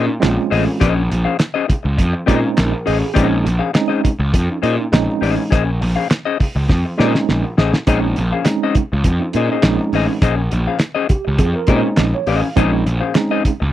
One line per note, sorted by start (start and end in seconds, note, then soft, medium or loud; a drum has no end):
0.00 0.11 C#4 loud
0.06 0.14 C#4 medium
0.06 0.14 D#4 loud
0.06 muted clean electric guitar stroke soft
0.20 0.37 A#1 medium
0.20 0.77 G#3 medium
0.20 0.78 C4 medium
0.20 0.78 C#4 medium
0.20 0.78 F4 loud
0.20 snare loud
0.20 clap loud
0.20 closed hi-hat medium
0.37 muted clean electric guitar stroke soft
0.50 0.66 A1 medium
0.50 0.70 C#4 medium
0.50 0.66 G#4 medium
0.50 0.66 C5 loud
0.50 0.66 D#5 loud
0.50 open hi-hat medium
0.67 muted clean electric guitar stroke soft
0.80 1.07 A#1 loud
0.80 1.01 C#4 medium
0.80 0.96 G#4 medium
0.80 0.96 C5 medium
0.80 0.95 D#5 medium
0.80 kick loud
0.80 closed hi-hat medium
0.96 muted clean electric guitar stroke soft
1.09 1.25 A#1 loud
1.09 muted clean electric guitar stroke soft
1.09 closed hi-hat medium
1.25 1.38 C#4 medium
1.25 1.38 G#4 medium
1.25 1.38 C5 medium
1.25 1.39 F5 medium
1.39 muted clean electric guitar stroke soft
1.39 snare medium
1.39 clap medium
1.39 closed hi-hat medium
1.54 1.66 C#4 medium
1.54 1.67 G#4 medium
1.54 1.67 C5 medium
1.54 1.68 D#5 medium
1.68 muted clean electric guitar stroke soft
1.68 muted picked electric bass stroke soft
1.68 kick medium
1.68 closed hi-hat medium
1.83 1.97 C#2 medium
1.83 muted clean electric guitar stroke soft
1.97 2.13 F2 loud
1.97 muted clean electric guitar stroke soft
1.97 kick medium
1.97 closed hi-hat medium
2.13 muted clean electric guitar stroke medium
2.26 2.42 A#2 loud
2.26 2.71 G#3 medium
2.26 2.70 C4 medium
2.26 2.48 C#4 medium
2.26 2.71 C#4 medium
2.26 2.71 D#4 loud
2.26 2.42 G#4 loud
2.26 2.42 C5 medium
2.26 2.55 C5 medium
2.26 2.41 D#5 loud
2.26 kick medium
2.26 closed hi-hat medium
2.42 muted clean electric guitar stroke medium
2.57 2.72 A#1 loud
2.57 2.85 A#4 medium
2.57 snare loud
2.57 clap loud
2.57 closed hi-hat medium
2.72 muted clean electric guitar stroke soft
2.86 3.01 A1 medium
2.86 3.05 C#4 medium
2.86 3.00 G#4 medium
2.86 3.14 G#4 medium
2.86 3.00 C5 medium
2.86 2.99 D#5 medium
2.86 open hi-hat medium
3.00 muted clean electric guitar stroke medium
3.14 3.42 A#1 loud
3.14 3.44 G#3 medium
3.14 3.44 C4 medium
3.14 3.36 C#4 loud
3.14 3.45 C#4 medium
3.14 3.45 D#4 medium
3.14 3.29 G#4 medium
3.14 3.29 C5 medium
3.14 3.28 D#5 loud
3.14 kick loud
3.14 closed hi-hat medium
3.30 muted clean electric guitar stroke soft
3.44 3.60 A#1 loud
3.44 muted clean electric guitar stroke soft
3.44 closed hi-hat medium
3.59 3.72 C#4 medium
3.59 3.72 G#4 medium
3.59 3.72 C5 medium
3.59 3.74 F5 medium
3.75 4.11 G#3 medium
3.75 4.11 C4 medium
3.75 4.11 C#4 medium
3.75 4.11 D#4 loud
3.75 snare loud
3.75 clap medium
3.75 closed hi-hat medium
3.88 4.02 C#4 medium
3.88 4.03 G#4 medium
3.88 4.03 C5 medium
3.88 4.03 D#5 medium
4.03 muted clean electric guitar stroke soft
4.03 muted picked electric bass stroke medium
4.03 kick medium
4.03 closed hi-hat medium
4.19 4.32 C#2 medium
4.19 muted clean electric guitar stroke soft
4.33 4.48 F2 medium
4.33 muted clean electric guitar stroke soft
4.33 kick medium
4.33 closed hi-hat medium
4.50 4.56 C#4 medium
4.50 4.57 D#4 medium
4.62 4.77 A#2 medium
4.62 4.78 C#4 medium
4.62 4.71 C#4 medium
4.62 4.71 D#4 loud
4.62 4.78 G#4 medium
4.62 4.77 C5 medium
4.62 4.77 D#5 medium
4.62 closed hi-hat medium
4.78 4.85 C#4 medium
4.78 4.86 D#4 loud
4.78 muted clean electric guitar stroke soft
4.92 5.07 A#1 medium
4.92 5.49 G#3 medium
4.92 5.49 C4 medium
4.92 5.49 C#4 medium
4.92 5.49 D#4 loud
4.92 snare loud
4.92 clap medium
4.92 closed hi-hat medium
5.08 muted clean electric guitar stroke soft
5.21 5.36 A1 medium
5.21 5.42 C#4 medium
5.21 5.37 G#4 medium
5.21 5.37 C5 medium
5.21 5.36 D#5 medium
5.21 open hi-hat medium
5.37 muted clean electric guitar stroke soft
5.50 5.78 A#1 medium
5.50 5.70 C#4 medium
5.50 5.66 G#4 medium
5.50 5.65 C5 medium
5.50 5.65 D#5 medium
5.50 kick loud
5.50 closed hi-hat medium
5.66 muted clean electric guitar stroke soft
5.80 5.95 A#1 loud
5.80 muted clean electric guitar stroke soft
5.80 open hi-hat medium
5.96 6.08 C#4 soft
5.96 6.09 G#4 medium
5.96 6.09 C5 medium
5.96 6.10 F5 medium
6.09 muted clean electric guitar stroke soft
6.09 snare loud
6.09 clap medium
6.09 closed hi-hat medium
6.25 6.38 C#4 medium
6.25 6.38 G#4 medium
6.25 6.39 C5 medium
6.25 6.39 D#5 medium
6.40 muted clean electric guitar stroke soft
6.40 muted picked electric bass stroke soft
6.40 kick medium
6.40 open hi-hat medium
6.56 6.68 C#2 medium
6.56 muted clean electric guitar stroke soft
6.69 6.83 F2 loud
6.69 muted clean electric guitar stroke soft
6.69 kick medium
6.69 snare medium
6.86 muted clean electric guitar stroke soft
6.98 7.13 A#2 medium
6.98 7.41 G#3 loud
6.98 7.41 C4 medium
6.98 7.19 C#4 medium
6.98 7.42 C#4 medium
6.98 7.42 D#4 loud
6.98 7.15 G#4 loud
6.98 7.14 C5 loud
6.98 7.14 D#5 medium
6.98 snare medium
7.15 muted clean electric guitar stroke soft
7.15 snare medium
7.29 7.43 A#1 medium
7.29 snare medium
7.44 muted clean electric guitar stroke soft
7.58 7.72 A1 medium
7.58 7.76 C#4 medium
7.58 7.74 G#4 medium
7.58 7.73 C5 medium
7.58 7.73 D#5 medium
7.58 snare loud
7.73 muted clean electric guitar stroke soft
7.73 snare loud
7.87 8.13 A#1 loud
7.87 8.15 G#3 medium
7.87 8.15 C4 medium
7.87 8.06 C#4 loud
7.87 8.15 C#4 medium
7.87 8.15 D#4 loud
7.87 8.02 G#4 loud
7.87 8.02 C5 loud
7.87 8.01 D#5 loud
7.87 kick loud
7.87 closed hi-hat loud
8.02 muted clean electric guitar stroke soft
8.16 8.31 A#1 loud
8.16 muted clean electric guitar stroke soft
8.16 closed hi-hat medium
8.32 8.46 C#4 medium
8.32 8.46 G#4 medium
8.32 8.46 C5 medium
8.32 8.45 F5 medium
8.45 8.81 G#3 medium
8.45 8.81 C4 medium
8.45 8.81 C#4 medium
8.45 8.81 D#4 medium
8.45 muted clean electric guitar stroke soft
8.45 snare loud
8.45 clap medium
8.45 closed hi-hat medium
8.63 8.75 C#4 medium
8.63 8.76 G#4 medium
8.63 8.76 C5 medium
8.63 8.76 D#5 medium
8.75 muted picked electric bass stroke soft
8.75 kick medium
8.75 closed hi-hat medium
8.92 9.04 C#2 medium
8.92 muted clean electric guitar stroke soft
9.04 9.18 F2 medium
9.04 muted clean electric guitar stroke soft
9.04 kick medium
9.04 closed hi-hat medium
9.19 9.26 C#4 medium
9.19 9.27 D#4 medium
9.19 muted clean electric guitar stroke soft
9.32 9.48 A#2 medium
9.32 9.41 C#4 medium
9.32 9.50 C#4 medium
9.32 9.41 D#4 loud
9.32 9.50 G#4 medium
9.32 9.50 C5 medium
9.32 closed hi-hat medium
9.37 9.50 D#5 medium
9.48 9.55 C#4 medium
9.48 9.56 D#4 loud
9.48 9.64 D#5 medium
9.52 9.65 C#4 soft
9.52 9.64 G#4 medium
9.52 9.64 C5 medium
9.62 9.77 A#1 medium
9.62 10.19 G#3 loud
9.62 10.19 C4 medium
9.62 10.19 C#4 medium
9.62 10.20 D#4 loud
9.62 snare loud
9.62 clap loud
9.62 closed hi-hat medium
9.81 muted clean electric guitar stroke medium
9.93 10.07 A1 medium
9.93 10.12 C#4 medium
9.93 10.09 G#4 medium
9.93 10.08 C5 medium
9.93 10.08 D#5 medium
9.93 open hi-hat medium
10.09 muted clean electric guitar stroke soft
10.22 10.48 A#1 medium
10.22 10.41 C#4 medium
10.22 10.37 G#4 medium
10.22 10.37 C5 medium
10.22 10.36 D#5 medium
10.22 kick loud
10.22 closed hi-hat medium
10.37 muted clean electric guitar stroke soft
10.51 10.66 A#1 loud
10.51 muted clean electric guitar stroke soft
10.51 closed hi-hat medium
10.67 10.79 C#4 soft
10.67 10.79 G#4 medium
10.67 10.79 C5 medium
10.67 10.80 F5 medium
10.79 muted clean electric guitar stroke soft
10.79 snare medium
10.79 clap medium
10.79 closed hi-hat medium
10.95 11.08 C#4 medium
10.95 11.08 G#4 medium
10.95 11.08 C5 medium
10.95 11.09 D#5 medium
11.09 11.38 G4 medium
11.09 muted picked electric bass stroke soft
11.09 kick medium
11.09 closed hi-hat medium
11.25 11.38 C#2 medium
11.25 muted clean electric guitar stroke soft
11.38 11.53 F2 medium
11.38 11.54 G#4 medium
11.38 muted clean electric guitar stroke soft
11.38 kick medium
11.38 closed hi-hat medium
11.54 11.68 A#4 medium
11.54 muted clean electric guitar stroke soft
11.67 11.82 A#2 loud
11.67 12.12 G#3 loud
11.67 12.12 C4 medium
11.67 11.89 C#4 medium
11.67 12.12 C#4 medium
11.67 12.12 D#4 loud
11.67 11.84 G#4 medium
11.67 11.83 C5 medium
11.67 11.97 C5 medium
11.67 11.83 D#5 medium
11.67 kick loud
11.67 closed hi-hat medium
11.84 muted clean electric guitar stroke soft
11.97 12.12 A#1 loud
11.97 12.13 D#5 medium
11.97 snare loud
11.97 clap loud
11.97 closed hi-hat medium
12.14 12.27 C#5 medium
12.14 muted clean electric guitar stroke soft
12.27 12.41 A1 medium
12.27 12.48 C#4 medium
12.27 12.43 G#4 medium
12.27 12.43 C5 medium
12.27 12.42 D#5 medium
12.27 12.55 F5 medium
12.27 open hi-hat medium
12.43 muted clean electric guitar stroke soft
12.56 12.83 A#1 loud
12.56 12.85 G#3 medium
12.56 12.85 C4 medium
12.56 12.85 C#4 medium
12.56 12.76 C#4 loud
12.56 12.85 D#4 loud
12.56 12.73 G#4 loud
12.56 12.72 C5 loud
12.56 12.72 D#5 loud
12.56 kick loud
12.56 closed hi-hat medium
12.73 muted clean electric guitar stroke soft
12.86 13.00 A#1 loud
12.86 muted clean electric guitar stroke soft
12.86 closed hi-hat medium
13.00 13.14 C#4 medium
13.00 13.15 G#4 soft
13.00 13.15 C5 medium
13.00 13.15 F5 medium
13.15 13.51 G#3 medium
13.15 13.51 C4 medium
13.15 13.51 C#4 medium
13.15 13.51 D#4 loud
13.15 muted clean electric guitar stroke soft
13.15 snare loud
13.15 clap medium
13.15 closed hi-hat medium
13.31 13.44 C#4 medium
13.31 13.44 G#4 medium
13.31 13.45 C5 medium
13.31 13.44 D#5 loud
13.45 muted picked electric bass stroke medium
13.45 kick medium
13.45 closed hi-hat medium
13.60 13.73 C#2 medium
13.60 muted clean electric guitar stroke soft